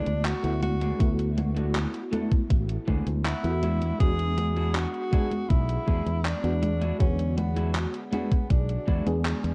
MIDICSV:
0, 0, Header, 1, 7, 480
1, 0, Start_track
1, 0, Tempo, 750000
1, 642, Time_signature, 4, 2, 24, 8
1, 6108, End_track
2, 0, Start_track
2, 0, Title_t, "Tenor saxophone"
2, 0, Program_c, 0, 66
2, 0, Note_on_c, 0, 62, 112
2, 161, Note_on_c, 0, 66, 114
2, 170, Note_off_c, 0, 62, 0
2, 397, Note_off_c, 0, 66, 0
2, 401, Note_on_c, 0, 66, 107
2, 856, Note_off_c, 0, 66, 0
2, 2082, Note_on_c, 0, 64, 108
2, 2536, Note_off_c, 0, 64, 0
2, 2559, Note_on_c, 0, 68, 126
2, 3039, Note_on_c, 0, 66, 117
2, 3049, Note_off_c, 0, 68, 0
2, 3515, Note_on_c, 0, 64, 109
2, 3524, Note_off_c, 0, 66, 0
2, 3998, Note_on_c, 0, 62, 103
2, 4008, Note_off_c, 0, 64, 0
2, 4474, Note_off_c, 0, 62, 0
2, 4478, Note_on_c, 0, 61, 99
2, 4703, Note_off_c, 0, 61, 0
2, 4720, Note_on_c, 0, 59, 87
2, 5007, Note_off_c, 0, 59, 0
2, 5201, Note_on_c, 0, 59, 88
2, 5441, Note_on_c, 0, 62, 87
2, 5450, Note_off_c, 0, 59, 0
2, 5921, Note_off_c, 0, 62, 0
2, 6108, End_track
3, 0, Start_track
3, 0, Title_t, "Clean electric guitar"
3, 0, Program_c, 1, 27
3, 519, Note_on_c, 1, 57, 82
3, 522, Note_on_c, 1, 62, 77
3, 523, Note_on_c, 1, 59, 74
3, 525, Note_on_c, 1, 68, 89
3, 641, Note_off_c, 1, 57, 0
3, 641, Note_off_c, 1, 59, 0
3, 642, Note_off_c, 1, 62, 0
3, 643, Note_off_c, 1, 68, 0
3, 999, Note_on_c, 1, 57, 82
3, 1003, Note_on_c, 1, 62, 72
3, 1004, Note_on_c, 1, 59, 75
3, 1005, Note_on_c, 1, 66, 87
3, 1121, Note_off_c, 1, 57, 0
3, 1122, Note_off_c, 1, 59, 0
3, 1122, Note_off_c, 1, 62, 0
3, 1123, Note_off_c, 1, 66, 0
3, 1358, Note_on_c, 1, 57, 89
3, 1364, Note_on_c, 1, 62, 82
3, 1364, Note_on_c, 1, 69, 102
3, 1365, Note_on_c, 1, 59, 79
3, 1481, Note_off_c, 1, 57, 0
3, 1482, Note_off_c, 1, 59, 0
3, 1483, Note_off_c, 1, 62, 0
3, 1483, Note_off_c, 1, 69, 0
3, 1839, Note_on_c, 1, 57, 85
3, 1842, Note_on_c, 1, 62, 84
3, 1843, Note_on_c, 1, 59, 78
3, 1845, Note_on_c, 1, 68, 97
3, 1961, Note_off_c, 1, 57, 0
3, 1962, Note_off_c, 1, 59, 0
3, 1963, Note_off_c, 1, 62, 0
3, 1963, Note_off_c, 1, 68, 0
3, 2081, Note_on_c, 1, 78, 80
3, 2305, Note_off_c, 1, 78, 0
3, 2319, Note_on_c, 1, 56, 92
3, 2322, Note_on_c, 1, 64, 86
3, 2323, Note_on_c, 1, 62, 86
3, 2324, Note_on_c, 1, 76, 79
3, 2326, Note_on_c, 1, 66, 101
3, 2545, Note_off_c, 1, 76, 0
3, 2705, Note_off_c, 1, 56, 0
3, 2706, Note_off_c, 1, 62, 0
3, 2707, Note_off_c, 1, 64, 0
3, 2708, Note_off_c, 1, 66, 0
3, 2919, Note_on_c, 1, 56, 80
3, 2923, Note_on_c, 1, 62, 76
3, 2923, Note_on_c, 1, 66, 90
3, 2924, Note_on_c, 1, 64, 72
3, 3041, Note_off_c, 1, 56, 0
3, 3041, Note_off_c, 1, 62, 0
3, 3042, Note_off_c, 1, 64, 0
3, 3042, Note_off_c, 1, 66, 0
3, 3279, Note_on_c, 1, 56, 91
3, 3282, Note_on_c, 1, 62, 84
3, 3283, Note_on_c, 1, 66, 99
3, 3284, Note_on_c, 1, 64, 84
3, 3401, Note_off_c, 1, 56, 0
3, 3402, Note_off_c, 1, 62, 0
3, 3403, Note_off_c, 1, 64, 0
3, 3403, Note_off_c, 1, 66, 0
3, 3759, Note_on_c, 1, 56, 89
3, 3761, Note_on_c, 1, 62, 77
3, 3762, Note_on_c, 1, 68, 95
3, 3764, Note_on_c, 1, 64, 81
3, 3881, Note_off_c, 1, 56, 0
3, 3882, Note_off_c, 1, 62, 0
3, 3882, Note_off_c, 1, 64, 0
3, 3883, Note_off_c, 1, 68, 0
3, 4360, Note_on_c, 1, 56, 88
3, 4362, Note_on_c, 1, 62, 79
3, 4363, Note_on_c, 1, 66, 96
3, 4364, Note_on_c, 1, 64, 78
3, 4481, Note_off_c, 1, 56, 0
3, 4481, Note_off_c, 1, 62, 0
3, 4482, Note_off_c, 1, 64, 0
3, 4483, Note_off_c, 1, 66, 0
3, 4840, Note_on_c, 1, 56, 79
3, 4842, Note_on_c, 1, 62, 75
3, 4843, Note_on_c, 1, 66, 88
3, 4844, Note_on_c, 1, 64, 74
3, 4961, Note_off_c, 1, 56, 0
3, 4961, Note_off_c, 1, 62, 0
3, 4962, Note_off_c, 1, 64, 0
3, 4963, Note_off_c, 1, 66, 0
3, 5198, Note_on_c, 1, 56, 88
3, 5202, Note_on_c, 1, 62, 82
3, 5202, Note_on_c, 1, 66, 104
3, 5204, Note_on_c, 1, 64, 83
3, 5321, Note_off_c, 1, 56, 0
3, 5322, Note_off_c, 1, 62, 0
3, 5322, Note_off_c, 1, 64, 0
3, 5323, Note_off_c, 1, 66, 0
3, 5678, Note_on_c, 1, 56, 89
3, 5682, Note_on_c, 1, 62, 82
3, 5683, Note_on_c, 1, 66, 97
3, 5684, Note_on_c, 1, 64, 82
3, 5801, Note_off_c, 1, 56, 0
3, 5802, Note_off_c, 1, 62, 0
3, 5802, Note_off_c, 1, 64, 0
3, 5803, Note_off_c, 1, 66, 0
3, 6108, End_track
4, 0, Start_track
4, 0, Title_t, "FM electric piano"
4, 0, Program_c, 2, 5
4, 0, Control_c, 2, 64, 127
4, 0, Note_on_c, 2, 57, 83
4, 0, Note_on_c, 2, 59, 76
4, 0, Note_on_c, 2, 64, 76
4, 0, Note_on_c, 2, 66, 100
4, 253, Note_off_c, 2, 57, 0
4, 256, Note_off_c, 2, 59, 0
4, 259, Note_off_c, 2, 64, 0
4, 276, Note_on_c, 2, 57, 83
4, 279, Note_on_c, 2, 59, 77
4, 282, Note_on_c, 2, 64, 76
4, 285, Note_off_c, 2, 66, 0
4, 285, Note_on_c, 2, 66, 89
4, 359, Note_off_c, 2, 57, 0
4, 361, Note_off_c, 2, 59, 0
4, 362, Note_off_c, 2, 64, 0
4, 364, Note_off_c, 2, 66, 0
4, 632, Note_on_c, 2, 57, 96
4, 638, Note_on_c, 2, 59, 87
4, 645, Note_on_c, 2, 64, 88
4, 651, Note_on_c, 2, 66, 105
4, 1328, Note_off_c, 2, 57, 0
4, 1332, Note_off_c, 2, 59, 0
4, 1335, Note_off_c, 2, 64, 0
4, 1338, Note_off_c, 2, 66, 0
4, 1353, Note_on_c, 2, 57, 82
4, 1358, Note_on_c, 2, 59, 77
4, 1365, Note_on_c, 2, 64, 76
4, 2174, Note_off_c, 2, 57, 0
4, 2177, Note_off_c, 2, 59, 0
4, 2180, Note_off_c, 2, 64, 0
4, 2196, Note_on_c, 2, 57, 81
4, 2199, Note_on_c, 2, 59, 74
4, 2203, Note_on_c, 2, 64, 79
4, 2206, Note_on_c, 2, 66, 93
4, 2279, Note_off_c, 2, 57, 0
4, 2281, Note_off_c, 2, 59, 0
4, 2283, Note_off_c, 2, 64, 0
4, 2284, Note_off_c, 2, 66, 0
4, 2331, Control_c, 2, 64, 0
4, 2440, Control_c, 2, 64, 127
4, 2552, Note_on_c, 2, 56, 100
4, 2558, Note_on_c, 2, 59, 87
4, 2565, Note_on_c, 2, 62, 87
4, 2571, Note_on_c, 2, 66, 103
4, 3248, Note_off_c, 2, 56, 0
4, 3251, Note_off_c, 2, 59, 0
4, 3255, Note_off_c, 2, 62, 0
4, 3258, Note_off_c, 2, 66, 0
4, 3270, Note_on_c, 2, 56, 85
4, 3277, Note_on_c, 2, 59, 78
4, 3283, Note_on_c, 2, 62, 75
4, 3289, Note_on_c, 2, 68, 95
4, 4092, Note_off_c, 2, 56, 0
4, 4096, Note_off_c, 2, 59, 0
4, 4099, Note_off_c, 2, 62, 0
4, 4102, Note_off_c, 2, 68, 0
4, 4116, Note_on_c, 2, 56, 84
4, 4119, Note_on_c, 2, 59, 77
4, 4122, Note_on_c, 2, 62, 78
4, 4125, Note_on_c, 2, 66, 97
4, 4199, Note_off_c, 2, 56, 0
4, 4201, Note_off_c, 2, 59, 0
4, 4202, Note_off_c, 2, 62, 0
4, 4204, Note_off_c, 2, 66, 0
4, 4472, Note_on_c, 2, 56, 93
4, 4478, Note_on_c, 2, 59, 85
4, 4485, Note_on_c, 2, 50, 85
4, 4491, Note_on_c, 2, 66, 102
4, 5168, Note_off_c, 2, 56, 0
4, 5171, Note_off_c, 2, 59, 0
4, 5175, Note_off_c, 2, 50, 0
4, 5178, Note_off_c, 2, 66, 0
4, 5192, Note_on_c, 2, 56, 87
4, 5199, Note_on_c, 2, 59, 77
4, 5204, Note_on_c, 2, 62, 77
4, 5211, Note_on_c, 2, 68, 93
4, 5773, Note_off_c, 2, 56, 0
4, 5777, Note_off_c, 2, 59, 0
4, 5780, Note_off_c, 2, 62, 0
4, 5783, Note_off_c, 2, 68, 0
4, 5797, Note_on_c, 2, 56, 98
4, 5800, Note_on_c, 2, 59, 92
4, 5803, Note_on_c, 2, 62, 92
4, 5807, Note_on_c, 2, 68, 111
4, 5880, Note_off_c, 2, 56, 0
4, 5881, Note_off_c, 2, 59, 0
4, 5883, Note_off_c, 2, 62, 0
4, 5885, Note_off_c, 2, 68, 0
4, 6108, End_track
5, 0, Start_track
5, 0, Title_t, "Fingered electric bass"
5, 0, Program_c, 3, 33
5, 41, Note_on_c, 3, 38, 84
5, 209, Note_off_c, 3, 38, 0
5, 281, Note_on_c, 3, 38, 91
5, 583, Note_off_c, 3, 38, 0
5, 641, Note_on_c, 3, 38, 97
5, 1184, Note_off_c, 3, 38, 0
5, 1602, Note_on_c, 3, 33, 96
5, 1769, Note_off_c, 3, 33, 0
5, 1842, Note_on_c, 3, 38, 90
5, 1926, Note_off_c, 3, 38, 0
5, 1962, Note_on_c, 3, 38, 86
5, 2129, Note_off_c, 3, 38, 0
5, 2201, Note_on_c, 3, 40, 96
5, 2503, Note_off_c, 3, 40, 0
5, 2562, Note_on_c, 3, 40, 96
5, 3104, Note_off_c, 3, 40, 0
5, 3522, Note_on_c, 3, 35, 98
5, 3690, Note_off_c, 3, 35, 0
5, 3762, Note_on_c, 3, 40, 91
5, 3846, Note_off_c, 3, 40, 0
5, 3881, Note_on_c, 3, 40, 86
5, 4049, Note_off_c, 3, 40, 0
5, 4120, Note_on_c, 3, 40, 94
5, 4423, Note_off_c, 3, 40, 0
5, 4482, Note_on_c, 3, 40, 95
5, 5024, Note_off_c, 3, 40, 0
5, 5442, Note_on_c, 3, 35, 98
5, 5610, Note_off_c, 3, 35, 0
5, 5682, Note_on_c, 3, 40, 85
5, 5766, Note_off_c, 3, 40, 0
5, 5801, Note_on_c, 3, 40, 87
5, 5969, Note_off_c, 3, 40, 0
5, 6041, Note_on_c, 3, 40, 93
5, 6108, Note_off_c, 3, 40, 0
5, 6108, End_track
6, 0, Start_track
6, 0, Title_t, "Muted clean electric guitar strokes"
6, 399, Note_on_c, 9, 29, 89
6, 463, Note_off_c, 9, 29, 0
6, 880, Note_on_c, 9, 29, 89
6, 944, Note_off_c, 9, 29, 0
6, 2799, Note_on_c, 9, 29, 90
6, 2863, Note_off_c, 9, 29, 0
6, 4239, Note_on_c, 9, 29, 92
6, 4303, Note_off_c, 9, 29, 0
6, 4719, Note_on_c, 9, 29, 91
6, 4783, Note_off_c, 9, 29, 0
6, 6108, End_track
7, 0, Start_track
7, 0, Title_t, "Drums"
7, 41, Note_on_c, 9, 42, 38
7, 41, Note_on_c, 9, 63, 37
7, 105, Note_off_c, 9, 42, 0
7, 105, Note_off_c, 9, 63, 0
7, 161, Note_on_c, 9, 39, 123
7, 161, Note_on_c, 9, 42, 93
7, 161, Note_on_c, 9, 63, 29
7, 225, Note_off_c, 9, 39, 0
7, 225, Note_off_c, 9, 42, 0
7, 225, Note_off_c, 9, 63, 0
7, 282, Note_on_c, 9, 42, 36
7, 346, Note_off_c, 9, 42, 0
7, 401, Note_on_c, 9, 42, 67
7, 401, Note_on_c, 9, 63, 63
7, 465, Note_off_c, 9, 42, 0
7, 465, Note_off_c, 9, 63, 0
7, 521, Note_on_c, 9, 42, 39
7, 521, Note_on_c, 9, 63, 35
7, 585, Note_off_c, 9, 42, 0
7, 585, Note_off_c, 9, 63, 0
7, 641, Note_on_c, 9, 36, 120
7, 641, Note_on_c, 9, 42, 85
7, 641, Note_on_c, 9, 63, 27
7, 705, Note_off_c, 9, 36, 0
7, 705, Note_off_c, 9, 42, 0
7, 705, Note_off_c, 9, 63, 0
7, 762, Note_on_c, 9, 42, 39
7, 826, Note_off_c, 9, 42, 0
7, 881, Note_on_c, 9, 42, 63
7, 881, Note_on_c, 9, 63, 66
7, 945, Note_off_c, 9, 42, 0
7, 945, Note_off_c, 9, 63, 0
7, 1002, Note_on_c, 9, 42, 38
7, 1002, Note_on_c, 9, 63, 38
7, 1066, Note_off_c, 9, 42, 0
7, 1066, Note_off_c, 9, 63, 0
7, 1121, Note_on_c, 9, 39, 115
7, 1121, Note_on_c, 9, 42, 94
7, 1121, Note_on_c, 9, 63, 29
7, 1185, Note_off_c, 9, 39, 0
7, 1185, Note_off_c, 9, 42, 0
7, 1185, Note_off_c, 9, 63, 0
7, 1242, Note_on_c, 9, 42, 38
7, 1306, Note_off_c, 9, 42, 0
7, 1361, Note_on_c, 9, 42, 65
7, 1361, Note_on_c, 9, 63, 67
7, 1425, Note_off_c, 9, 42, 0
7, 1425, Note_off_c, 9, 63, 0
7, 1482, Note_on_c, 9, 36, 103
7, 1482, Note_on_c, 9, 42, 39
7, 1482, Note_on_c, 9, 63, 37
7, 1546, Note_off_c, 9, 36, 0
7, 1546, Note_off_c, 9, 42, 0
7, 1546, Note_off_c, 9, 63, 0
7, 1602, Note_on_c, 9, 36, 118
7, 1602, Note_on_c, 9, 42, 91
7, 1602, Note_on_c, 9, 63, 30
7, 1666, Note_off_c, 9, 36, 0
7, 1666, Note_off_c, 9, 42, 0
7, 1666, Note_off_c, 9, 63, 0
7, 1723, Note_on_c, 9, 42, 39
7, 1787, Note_off_c, 9, 42, 0
7, 1842, Note_on_c, 9, 36, 59
7, 1842, Note_on_c, 9, 63, 66
7, 1906, Note_off_c, 9, 36, 0
7, 1906, Note_off_c, 9, 63, 0
7, 1963, Note_on_c, 9, 42, 40
7, 1963, Note_on_c, 9, 63, 38
7, 2027, Note_off_c, 9, 42, 0
7, 2027, Note_off_c, 9, 63, 0
7, 2083, Note_on_c, 9, 39, 116
7, 2083, Note_on_c, 9, 42, 88
7, 2083, Note_on_c, 9, 63, 28
7, 2147, Note_off_c, 9, 39, 0
7, 2147, Note_off_c, 9, 42, 0
7, 2147, Note_off_c, 9, 63, 0
7, 2203, Note_on_c, 9, 42, 37
7, 2267, Note_off_c, 9, 42, 0
7, 2322, Note_on_c, 9, 42, 67
7, 2322, Note_on_c, 9, 63, 66
7, 2386, Note_off_c, 9, 42, 0
7, 2386, Note_off_c, 9, 63, 0
7, 2443, Note_on_c, 9, 42, 38
7, 2443, Note_on_c, 9, 63, 38
7, 2507, Note_off_c, 9, 42, 0
7, 2507, Note_off_c, 9, 63, 0
7, 2561, Note_on_c, 9, 42, 90
7, 2561, Note_on_c, 9, 63, 28
7, 2562, Note_on_c, 9, 36, 117
7, 2625, Note_off_c, 9, 42, 0
7, 2625, Note_off_c, 9, 63, 0
7, 2626, Note_off_c, 9, 36, 0
7, 2682, Note_on_c, 9, 42, 40
7, 2746, Note_off_c, 9, 42, 0
7, 2801, Note_on_c, 9, 42, 67
7, 2801, Note_on_c, 9, 63, 69
7, 2865, Note_off_c, 9, 42, 0
7, 2865, Note_off_c, 9, 63, 0
7, 2921, Note_on_c, 9, 42, 39
7, 2921, Note_on_c, 9, 63, 38
7, 2985, Note_off_c, 9, 42, 0
7, 2985, Note_off_c, 9, 63, 0
7, 3041, Note_on_c, 9, 39, 123
7, 3041, Note_on_c, 9, 42, 95
7, 3041, Note_on_c, 9, 63, 29
7, 3105, Note_off_c, 9, 39, 0
7, 3105, Note_off_c, 9, 42, 0
7, 3105, Note_off_c, 9, 63, 0
7, 3162, Note_on_c, 9, 42, 37
7, 3226, Note_off_c, 9, 42, 0
7, 3282, Note_on_c, 9, 36, 105
7, 3282, Note_on_c, 9, 42, 64
7, 3282, Note_on_c, 9, 63, 66
7, 3346, Note_off_c, 9, 36, 0
7, 3346, Note_off_c, 9, 42, 0
7, 3346, Note_off_c, 9, 63, 0
7, 3402, Note_on_c, 9, 42, 39
7, 3402, Note_on_c, 9, 63, 38
7, 3466, Note_off_c, 9, 42, 0
7, 3466, Note_off_c, 9, 63, 0
7, 3522, Note_on_c, 9, 36, 113
7, 3522, Note_on_c, 9, 42, 91
7, 3522, Note_on_c, 9, 63, 30
7, 3586, Note_off_c, 9, 36, 0
7, 3586, Note_off_c, 9, 42, 0
7, 3586, Note_off_c, 9, 63, 0
7, 3642, Note_on_c, 9, 42, 41
7, 3706, Note_off_c, 9, 42, 0
7, 3762, Note_on_c, 9, 36, 62
7, 3762, Note_on_c, 9, 63, 67
7, 3826, Note_off_c, 9, 36, 0
7, 3826, Note_off_c, 9, 63, 0
7, 3882, Note_on_c, 9, 42, 42
7, 3882, Note_on_c, 9, 63, 39
7, 3946, Note_off_c, 9, 42, 0
7, 3946, Note_off_c, 9, 63, 0
7, 4002, Note_on_c, 9, 39, 117
7, 4002, Note_on_c, 9, 42, 94
7, 4002, Note_on_c, 9, 63, 28
7, 4066, Note_off_c, 9, 39, 0
7, 4066, Note_off_c, 9, 42, 0
7, 4066, Note_off_c, 9, 63, 0
7, 4122, Note_on_c, 9, 42, 39
7, 4186, Note_off_c, 9, 42, 0
7, 4242, Note_on_c, 9, 42, 65
7, 4242, Note_on_c, 9, 63, 65
7, 4306, Note_off_c, 9, 42, 0
7, 4306, Note_off_c, 9, 63, 0
7, 4362, Note_on_c, 9, 42, 40
7, 4362, Note_on_c, 9, 63, 38
7, 4426, Note_off_c, 9, 42, 0
7, 4426, Note_off_c, 9, 63, 0
7, 4482, Note_on_c, 9, 36, 120
7, 4482, Note_on_c, 9, 42, 94
7, 4546, Note_off_c, 9, 36, 0
7, 4546, Note_off_c, 9, 42, 0
7, 4602, Note_on_c, 9, 42, 40
7, 4666, Note_off_c, 9, 42, 0
7, 4721, Note_on_c, 9, 42, 69
7, 4721, Note_on_c, 9, 63, 68
7, 4785, Note_off_c, 9, 42, 0
7, 4785, Note_off_c, 9, 63, 0
7, 4842, Note_on_c, 9, 42, 41
7, 4842, Note_on_c, 9, 63, 40
7, 4906, Note_off_c, 9, 42, 0
7, 4906, Note_off_c, 9, 63, 0
7, 4961, Note_on_c, 9, 39, 114
7, 4961, Note_on_c, 9, 42, 101
7, 4961, Note_on_c, 9, 63, 31
7, 5025, Note_off_c, 9, 39, 0
7, 5025, Note_off_c, 9, 42, 0
7, 5025, Note_off_c, 9, 63, 0
7, 5082, Note_on_c, 9, 42, 40
7, 5146, Note_off_c, 9, 42, 0
7, 5201, Note_on_c, 9, 42, 68
7, 5201, Note_on_c, 9, 63, 72
7, 5265, Note_off_c, 9, 42, 0
7, 5265, Note_off_c, 9, 63, 0
7, 5322, Note_on_c, 9, 36, 108
7, 5322, Note_on_c, 9, 42, 42
7, 5322, Note_on_c, 9, 63, 40
7, 5386, Note_off_c, 9, 36, 0
7, 5386, Note_off_c, 9, 42, 0
7, 5386, Note_off_c, 9, 63, 0
7, 5441, Note_on_c, 9, 42, 102
7, 5441, Note_on_c, 9, 63, 31
7, 5442, Note_on_c, 9, 36, 121
7, 5505, Note_off_c, 9, 42, 0
7, 5505, Note_off_c, 9, 63, 0
7, 5506, Note_off_c, 9, 36, 0
7, 5562, Note_on_c, 9, 42, 42
7, 5626, Note_off_c, 9, 42, 0
7, 5681, Note_on_c, 9, 63, 74
7, 5682, Note_on_c, 9, 36, 62
7, 5745, Note_off_c, 9, 63, 0
7, 5746, Note_off_c, 9, 36, 0
7, 5802, Note_on_c, 9, 42, 43
7, 5802, Note_on_c, 9, 63, 41
7, 5866, Note_off_c, 9, 42, 0
7, 5866, Note_off_c, 9, 63, 0
7, 5921, Note_on_c, 9, 39, 121
7, 5921, Note_on_c, 9, 42, 94
7, 5921, Note_on_c, 9, 63, 29
7, 5985, Note_off_c, 9, 39, 0
7, 5985, Note_off_c, 9, 42, 0
7, 5985, Note_off_c, 9, 63, 0
7, 6043, Note_on_c, 9, 42, 40
7, 6107, Note_off_c, 9, 42, 0
7, 6108, End_track
0, 0, End_of_file